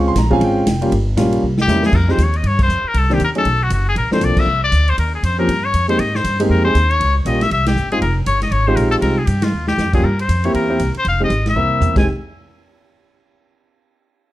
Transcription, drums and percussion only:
0.16 kick, snare, hi-hat pedal, ride
0.31 kick
0.41 kick, ride
0.66 kick, snare, hi-hat pedal, ride
0.82 ride
0.92 kick, ride
1.17 kick, snare, hi-hat pedal, ride
1.32 ride
1.58 snare
1.68 snare, hi-hat pedal
1.83 snare
1.93 kick, crash
2.08 snare
2.18 kick, hi-hat pedal, ride
2.34 ride
2.44 kick, ride
2.59 kick, crash
2.69 hi-hat pedal
2.94 kick, ride
3.10 snare
3.20 kick, hi-hat pedal, ride
3.35 ride
3.45 kick, ride
3.70 kick, hi-hat pedal, ride
3.96 kick, ride
4.12 snare
4.21 kick, hi-hat pedal, ride
4.37 kick, crash
4.72 kick, hi-hat pedal, ride
4.88 ride
4.98 kick, ride
5.23 kick, hi-hat pedal, ride
5.49 kick, ride
5.74 kick, hi-hat pedal, ride
5.89 ride
5.99 kick, ride
6.15 snare
6.24 kick, hi-hat pedal, ride
6.40 ride
6.50 kick
6.75 kick, hi-hat pedal, ride
6.91 ride
7.01 kick, ride
7.26 kick, hi-hat pedal, ride
7.41 snare, ride
7.51 kick, ride
7.66 snare, ride
7.77 hi-hat pedal
7.92 ride
8.02 kick, ride
8.26 kick, hi-hat pedal, ride
8.42 snare, ride
8.52 kick, ride
8.77 kick, hi-hat pedal, ride
8.92 ride
9.02 kick, ride
9.27 kick, hi-hat pedal, ride
9.42 snare, ride
9.67 snare
9.78 snare, hi-hat pedal
9.93 kick, crash
10.04 kick
10.19 ride
10.29 kick, hi-hat pedal, ride
10.44 ride
10.54 kick, ride
10.79 kick, hi-hat pedal, ride
10.94 ride
11.05 kick, ride
11.30 kick, hi-hat pedal, ride
11.46 snare, ride
11.56 floor tom
11.81 floor tom, hi-hat pedal
11.96 kick, snare, crash

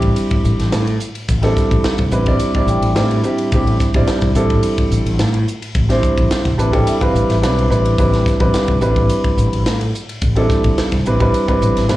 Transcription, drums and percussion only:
0.02 kick, ride
0.16 hi-hat pedal, ride
0.31 kick, ride
0.45 hi-hat pedal
0.60 snare, ride
0.72 snare, hi-hat pedal, ride
0.87 ride
1.00 hi-hat pedal
1.15 ride
1.28 kick, hi-hat pedal, ride
1.43 snare, ride
1.57 kick, snare, hi-hat pedal
1.71 kick, ride
1.84 snare, hi-hat pedal, ride
1.98 kick, ride
2.11 hi-hat pedal
2.26 kick, ride
2.39 hi-hat pedal, ride
2.54 kick, ride
2.67 hi-hat pedal
2.82 ride
2.96 snare, hi-hat pedal, ride
3.11 ride
3.24 hi-hat pedal
3.38 ride
3.52 kick, hi-hat pedal, ride
3.67 ride
3.80 kick, snare, hi-hat pedal
3.94 kick, ride
4.07 snare, hi-hat pedal, ride
4.21 kick, snare, ride
4.35 hi-hat pedal
4.50 kick, ride
4.63 hi-hat pedal, ride
4.78 kick, ride
4.92 hi-hat pedal
5.06 ride
5.19 snare, hi-hat pedal, ride
5.34 ride
5.48 hi-hat pedal
5.62 ride
5.75 kick, hi-hat pedal, ride
5.90 snare, ride
6.03 kick, hi-hat pedal
6.18 kick, ride
6.31 snare, hi-hat pedal, ride
6.45 kick, snare, ride
6.59 hi-hat pedal
6.73 kick, ride
6.87 hi-hat pedal, ride
7.01 kick, ride
7.15 hi-hat pedal
7.30 snare, ride
7.43 snare, hi-hat pedal, ride
7.59 ride
7.72 hi-hat pedal
7.86 ride
7.98 kick, hi-hat pedal, ride
8.13 snare, ride
8.26 kick, snare, hi-hat pedal
8.40 kick, ride
8.54 snare, hi-hat pedal, ride
8.68 kick, ride
8.81 hi-hat pedal
8.96 kick, ride
9.09 hi-hat pedal, ride
9.24 kick, ride
9.38 hi-hat pedal
9.53 ride
9.66 snare, hi-hat pedal, ride
9.81 ride
9.95 hi-hat pedal
10.09 ride
10.22 kick, hi-hat pedal, ride
10.36 ride
10.50 kick, snare, hi-hat pedal
10.64 kick, ride
10.78 snare, hi-hat pedal, ride
10.92 kick, snare, ride
11.05 hi-hat pedal
11.20 kick, ride
11.34 hi-hat pedal, ride
11.48 kick, ride
11.62 hi-hat pedal
11.77 snare, ride
11.89 snare, hi-hat pedal, ride

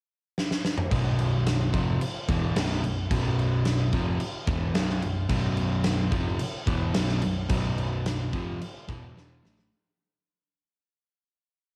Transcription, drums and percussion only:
0.38 snare
0.51 snare
0.65 snare
0.78 mid tom
0.91 kick, crash
1.19 crash
1.46 snare, crash
1.74 kick, crash
2.01 crash
2.29 kick, crash
2.56 snare, crash
2.84 crash
3.11 kick, crash
3.39 crash
3.65 snare, crash
3.93 kick, crash
4.20 crash
4.47 kick, crash
4.75 snare, crash
4.90 snare
5.02 crash
5.29 kick, crash
5.57 crash
5.84 snare, crash
6.12 kick, crash
6.39 crash
6.67 kick, crash
6.94 snare, crash
7.09 snare
7.22 crash
7.49 kick, crash
7.78 crash
8.06 snare, crash
8.33 kick, crash
8.62 crash
8.89 kick, crash
9.17 snare
9.45 snare
9.59 snare

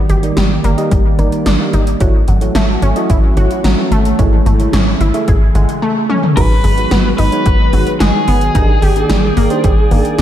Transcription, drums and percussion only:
0.09 closed hi-hat
0.23 closed hi-hat
0.37 snare, closed hi-hat
0.64 closed hi-hat
0.78 closed hi-hat
0.91 kick, closed hi-hat
1.19 closed hi-hat
1.32 closed hi-hat
1.46 snare, closed hi-hat
1.73 closed hi-hat
1.87 closed hi-hat
2.00 kick, closed hi-hat
2.28 closed hi-hat
2.41 closed hi-hat
2.55 snare, closed hi-hat
2.82 closed hi-hat
2.96 closed hi-hat
3.10 kick, closed hi-hat
3.37 closed hi-hat
3.51 closed hi-hat
3.64 snare, closed hi-hat
3.92 closed hi-hat
4.05 closed hi-hat
4.19 kick, closed hi-hat
4.46 closed hi-hat
4.60 closed hi-hat
4.73 snare, closed hi-hat
5.01 closed hi-hat
5.14 closed hi-hat
5.28 kick, closed hi-hat
5.55 closed hi-hat
5.69 closed hi-hat
6.09 high tom
6.23 mid tom
6.37 kick, closed hi-hat, crash
6.64 open hi-hat
6.78 closed hi-hat
6.91 snare, closed hi-hat
7.18 open hi-hat
7.32 closed hi-hat
7.46 kick, closed hi-hat
7.73 open hi-hat
7.87 closed hi-hat
8.00 snare, closed hi-hat
8.28 open hi-hat
8.41 closed hi-hat
8.55 kick, closed hi-hat
8.82 open hi-hat
8.96 closed hi-hat
9.10 snare, closed hi-hat
9.37 open hi-hat
9.50 closed hi-hat
9.64 kick, closed hi-hat
9.91 open hi-hat
10.05 closed hi-hat
10.19 snare, closed hi-hat

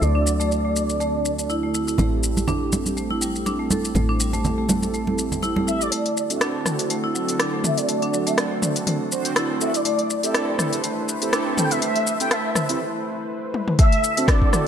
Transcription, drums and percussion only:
0.02 shaker
0.27 shaker
0.40 shaker
0.52 shaker
0.76 shaker
0.90 shaker
1.01 shaker
1.25 shaker
1.39 shaker
1.50 shaker
1.74 shaker
1.88 shaker
1.98 muted conga, high conga, low conga, shaker
2.23 shaker
2.37 muted conga, high conga, shaker
2.48 low conga, shaker
2.72 muted conga, high conga, shaker
2.86 high conga, shaker
2.97 shaker
3.10 muted conga
3.22 shaker
3.35 shaker
3.46 muted conga, shaker
3.71 high conga, shaker
3.85 shaker
3.95 muted conga, high conga, low conga, shaker
4.20 shaker
4.33 muted conga, high conga, shaker
4.45 low conga, shaker
4.69 muted conga, high conga, low conga, shaker
4.82 high conga, shaker
4.94 shaker
5.07 muted conga, high conga
5.18 shaker
5.32 low conga, shaker
5.43 muted conga, shaker
5.56 high conga
5.68 shaker
5.81 shaker
5.92 closed hi-hat, shaker
6.06 closed hi-hat
6.17 shaker
6.30 closed hi-hat, shaker
6.41 cross-stick, closed hi-hat, shaker
6.66 cross-stick, mid tom, shaker
6.79 closed hi-hat, shaker
6.90 closed hi-hat, shaker
7.15 shaker
7.29 closed hi-hat, shaker
7.40 cross-stick, closed hi-hat, shaker
7.64 mid tom, shaker
7.78 closed hi-hat, shaker
7.89 closed hi-hat, shaker
8.02 closed hi-hat
8.14 shaker
8.27 closed hi-hat, shaker
8.38 cross-stick, closed hi-hat, shaker
8.62 mid tom, shaker
8.76 closed hi-hat, shaker
8.87 closed hi-hat, mid tom, shaker
9.12 shaker
9.25 closed hi-hat, shaker
9.36 cross-stick, closed hi-hat, shaker
9.61 shaker
9.74 closed hi-hat, shaker
9.85 closed hi-hat, shaker
9.99 closed hi-hat
10.10 shaker
10.23 closed hi-hat, shaker
10.34 cross-stick, closed hi-hat, shaker
10.59 cross-stick, mid tom, shaker
10.73 closed hi-hat, shaker
10.84 closed hi-hat, shaker
11.09 shaker
11.22 closed hi-hat, shaker
11.33 cross-stick, closed hi-hat, shaker
11.58 mid tom, shaker
11.71 closed hi-hat, shaker
11.82 closed hi-hat, shaker
11.96 closed hi-hat
12.07 shaker
12.20 closed hi-hat, shaker
12.31 cross-stick, closed hi-hat, shaker
12.55 cross-stick, mid tom, shaker
12.69 closed hi-hat, shaker
13.54 high tom
13.68 mid tom
13.79 kick, closed hi-hat, shaker
13.92 closed hi-hat
14.04 shaker
14.17 closed hi-hat, shaker
14.28 kick, cross-stick, closed hi-hat, shaker
14.42 kick
14.53 cross-stick, mid tom, shaker

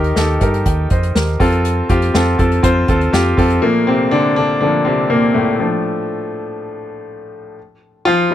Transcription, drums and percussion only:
0.04 closed hi-hat
0.16 snare
0.41 kick, closed hi-hat
0.54 closed hi-hat
0.66 kick, closed hi-hat
0.90 kick, closed hi-hat
1.03 closed hi-hat
1.16 snare
1.27 closed hi-hat
1.40 kick, open hi-hat
1.52 closed hi-hat
1.65 closed hi-hat
1.89 kick, closed hi-hat
2.02 closed hi-hat
2.15 snare
2.39 kick, closed hi-hat
2.52 closed hi-hat
2.64 kick, closed hi-hat
2.88 kick, closed hi-hat
3.01 closed hi-hat
3.14 snare
3.26 closed hi-hat
3.38 kick, open hi-hat
3.50 closed hi-hat

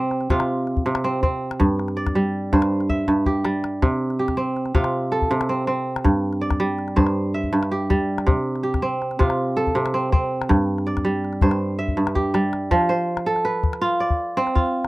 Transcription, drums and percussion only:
0.11 calabash click
0.21 calabash click
0.30 calabash thump
0.40 calabash click
0.67 calabash click
0.77 calabash thump
0.86 calabash click
0.95 calabash click
1.23 calabash thump, calabash click
1.51 calabash click
1.61 calabash thump, calabash click
1.79 calabash click
1.88 calabash click
2.07 calabash thump, calabash click
2.16 calabash click
2.53 calabash thump
2.62 calabash click
2.81 calabash click
2.90 calabash thump
3.08 calabash thump
3.26 calabash thump
3.45 calabash click
3.64 calabash click
3.83 calabash thump, calabash click
4.10 calabash click
4.28 calabash thump, calabash click
4.56 calabash click
4.66 calabash click
4.75 calabash thump
4.84 calabash click
5.12 calabash click
5.22 calabash thump
5.31 calabash click
5.41 calabash click
5.68 calabash click
5.96 calabash click
6.05 calabash thump, calabash click
6.33 calabash click
6.51 calabash thump, calabash click
6.78 calabash click
6.88 calabash click
6.98 calabash thump
7.07 calabash click
7.35 calabash click
7.44 calabash thump
7.54 calabash click
7.63 calabash click
7.90 calabash thump, calabash click
8.18 calabash click
8.28 calabash thump, calabash click
8.56 calabash click
8.74 calabash thump, calabash click
9.02 calabash click
9.11 calabash click
9.21 calabash thump
9.30 calabash click
9.58 calabash click
9.67 calabash thump
9.76 calabash click
9.86 calabash click
10.13 calabash thump
10.42 calabash click
10.51 calabash thump, calabash click
10.78 calabash click
10.88 calabash click
10.97 calabash thump, calabash click
11.06 calabash click
11.24 calabash click
11.33 calabash click
11.41 calabash thump
11.51 calabash click
11.88 calabash thump
12.07 calabash click
12.16 calabash thump
12.35 calabash click
12.53 calabash click
12.71 calabash thump, calabash click
12.81 calabash click
13.17 calabash click
13.36 calabash click
13.45 calabash click
13.63 calabash thump
13.73 calabash click
14.10 calabash thump
14.38 calabash click
14.47 calabash click
14.56 calabash thump
14.66 calabash click
14.85 calabash click

